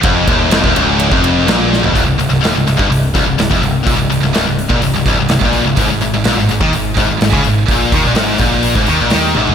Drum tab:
RD |x-x-x-x-x-x-x---|----------------|----------------|----------------|
HH |----------------|o-o-o-o-o-o-o-o-|o-o-o-o-o-o-o-o-|o-o-o-o-o-o-o-o-|
SD |----o-------o-o-|---oo-------o---|---oo-------o---|----o-------o---|
T1 |----------------|----------------|----------------|----------------|
FT |---------------o|----------------|----------------|----------------|
BD |o-o--o---o------|o------o--o--o--|o------o--o--o--|o------o--o--o--|

RD |----------------|
HH |o-o-o-o-o-o-o---|
SD |---oo-------o---|
T1 |--------------o-|
FT |---------------o|
BD |o-o---o--o------|